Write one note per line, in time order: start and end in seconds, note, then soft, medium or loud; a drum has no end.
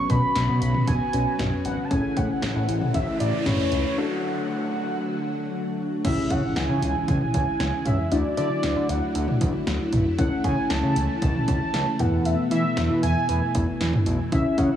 0.00 3.94 C#3 medium
0.00 1.87 F#3 medium
0.00 1.89 B3 medium
0.00 1.10 C#4 medium
0.00 1.10 F#4 medium
0.00 1.89 F#4 medium
0.00 1.10 B4 medium
0.00 0.12 C#6 loud
0.10 0.22 B2 medium
0.10 0.87 B5 loud
0.10 kick medium
0.10 closed hi-hat medium
0.36 0.48 B1 loud
0.36 snare loud
0.36 closed hi-hat medium
0.49 0.60 B2 loud
0.62 0.73 B1 loud
0.62 closed hi-hat medium
0.74 mid tom medium
0.88 0.99 B1 loud
0.88 1.61 G#5 loud
0.88 kick loud
0.88 closed hi-hat medium
1.13 1.25 B1 loud
1.13 1.90 C#4 medium
1.13 1.91 F#4 soft
1.13 1.91 B4 medium
1.13 closed hi-hat medium
1.39 1.51 B1 loud
1.39 snare loud
1.39 closed hi-hat medium
1.39 mid tom medium
1.65 1.77 G#1 loud
1.65 1.86 F#5 loud
1.65 closed hi-hat medium
1.85 1.93 A5 medium
1.91 2.03 A1 loud
1.91 3.96 E3 medium
1.91 6.01 A3 medium
1.91 3.43 C#4 medium
1.91 3.96 E4 medium
1.91 3.43 G#4 medium
1.91 3.43 A4 medium
1.91 2.18 G#5 loud
1.91 kick loud
1.91 closed hi-hat medium
1.91 noise sweep medium
2.17 2.28 A2 loud
2.17 2.94 F#5 loud
2.17 kick medium
2.17 closed hi-hat medium
2.42 2.54 A1 loud
2.42 snare loud
2.42 closed hi-hat medium
2.56 2.67 A2 medium
2.68 2.80 A1 loud
2.68 closed hi-hat medium
2.81 mid tom medium
2.94 3.06 A1 loud
2.94 3.19 E5 loud
2.94 kick loud
2.94 closed hi-hat medium
3.20 3.32 A1 loud
3.20 3.44 D5 medium
3.20 closed hi-hat medium
3.46 3.58 A1 loud
3.46 3.98 C#4 soft
3.46 3.98 G#4 soft
3.46 3.98 B4 medium
3.46 3.82 C#5 loud
3.46 snare loud
3.46 closed hi-hat medium
3.46 mid tom medium
3.72 3.84 C#2 medium
3.72 closed hi-hat medium
3.85 3.99 C#5 medium
3.98 6.03 D3 medium
3.98 6.03 F#3 medium
3.98 6.01 D4 medium
3.98 6.03 F#4 medium
3.98 6.01 F#4 medium
3.98 6.01 A4 medium
3.98 5.79 F#5 loud
6.05 6.16 C#2 loud
6.05 8.10 C#3 medium
6.05 8.10 E3 medium
6.05 8.10 G#3 medium
6.05 8.08 C#4 medium
6.05 14.28 E4 medium
6.05 8.08 E4 medium
6.05 8.08 G#4 medium
6.05 6.32 E5 loud
6.05 kick loud
6.05 closed hi-hat medium
6.05 crash loud
6.05 impact medium
6.30 6.42 C#3 loud
6.30 6.58 F#5 loud
6.30 kick loud
6.30 closed hi-hat medium
6.56 6.68 C#2 loud
6.56 7.08 G#5 loud
6.56 snare loud
6.56 closed hi-hat medium
6.69 6.81 C#3 loud
6.82 6.94 C#2 medium
6.82 closed hi-hat medium
7.08 7.20 C#2 loud
7.08 7.87 G#5 loud
7.08 kick loud
7.08 closed hi-hat medium
7.21 mid tom medium
7.34 7.46 C#2 loud
7.34 kick medium
7.34 closed hi-hat medium
7.60 7.72 C#2 loud
7.60 snare loud
7.60 closed hi-hat medium
7.86 7.97 C#2 medium
7.86 8.13 E5 loud
7.86 closed hi-hat medium
7.86 mid tom loud
8.11 8.23 D2 loud
8.11 10.16 D3 medium
8.11 10.16 F#3 medium
8.11 14.28 A3 medium
8.11 10.15 D4 medium
8.11 10.15 E4 medium
8.11 10.15 F#4 medium
8.11 8.37 D5 loud
8.11 closed hi-hat medium
8.37 8.49 D3 loud
8.37 8.91 D5 loud
8.37 closed hi-hat medium
8.63 8.75 D2 loud
8.63 snare loud
8.63 closed hi-hat medium
8.76 8.88 D3 medium
8.89 9.01 D2 loud
8.89 9.41 F#5 medium
8.89 closed hi-hat medium
9.15 9.27 D2 loud
9.15 closed hi-hat medium
9.28 mid tom medium
9.41 9.53 D2 loud
9.41 kick medium
9.41 closed hi-hat medium
9.67 9.79 D2 loud
9.67 snare loud
9.67 closed hi-hat medium
9.93 10.04 B1 medium
9.93 closed hi-hat medium
9.93 mid tom medium
10.18 10.30 C#2 loud
10.18 11.98 C#3 medium
10.18 14.76 E3 medium
10.18 11.96 C#4 medium
10.18 11.96 E4 medium
10.18 11.96 A4 medium
10.18 10.43 F#5 loud
10.18 kick loud
10.18 closed hi-hat medium
10.44 10.56 C#3 loud
10.44 10.72 G#5 loud
10.44 kick loud
10.44 closed hi-hat medium
10.70 10.82 C#2 medium
10.70 11.21 A5 loud
10.70 snare loud
10.70 closed hi-hat medium
10.83 10.95 C#3 loud
10.96 11.08 C#2 medium
10.96 closed hi-hat medium
11.22 11.34 C#2 loud
11.22 12.01 A5 loud
11.22 kick loud
11.22 closed hi-hat medium
11.35 mid tom medium
11.48 11.60 C#2 loud
11.48 kick medium
11.48 closed hi-hat medium
11.74 11.85 C#2 loud
11.74 snare loud
11.74 closed hi-hat medium
11.99 12.35 E2 loud
11.99 14.30 B2 medium
11.99 14.02 B3 medium
11.99 14.02 E4 medium
11.99 14.02 A4 medium
11.99 12.27 F#5 loud
11.99 closed hi-hat medium
11.99 mid tom medium
12.25 12.51 E5 loud
12.25 closed hi-hat medium
12.51 12.63 E3 loud
12.51 12.99 E5 loud
12.51 closed hi-hat medium
12.77 12.89 E2 loud
12.77 snare loud
12.77 closed hi-hat medium
12.90 13.02 E3 loud
13.03 13.15 E2 loud
13.03 13.51 G#5 loud
13.03 closed hi-hat medium
13.29 13.41 E2 loud
13.29 closed hi-hat medium
13.55 13.67 E2 loud
13.55 kick medium
13.55 closed hi-hat medium
13.81 13.92 E2 loud
13.81 snare loud
13.81 closed hi-hat medium
13.93 mid tom medium
14.06 14.18 B1 loud
14.06 closed hi-hat medium
14.32 14.44 C#2 loud
14.32 14.76 C#3 medium
14.32 14.76 G#3 medium
14.32 14.76 C#4 medium
14.32 14.76 E4 medium
14.32 14.76 G#4 medium
14.32 14.60 E5 loud
14.32 kick loud
14.32 closed hi-hat medium
14.58 14.70 C#3 loud
14.58 14.76 F#5 loud
14.58 kick medium
14.58 closed hi-hat medium